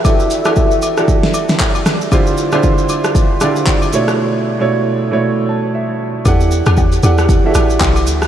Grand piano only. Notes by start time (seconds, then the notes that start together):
Already playing: E3 D4 E4 F#4 G4 A4 B4
0.05 E3 D4 F#4 G4 A4
0.45 E3 D4 F#4 G4 A4
0.97 E3 D4 F#4 G4 A4
2.11 D3 D4 E4 F4 G4 C5
2.52 D3 D4 E4 F4 G4 C5
3.41 D3 D4 E4 F4 G4 D5
3.93 B2 A3 D4 E4 C#5
4.59 B2 A3 D4 E4 C#5
5.11 B2 A3 D4 E4 C#5
5.49 A5
5.75 E5
6.25 E3 D4 G4 A4 F#5
7.03 E3 D4 G4 A4 F#5
7.44 E3 D4 F#4 A4 E5
7.51 G4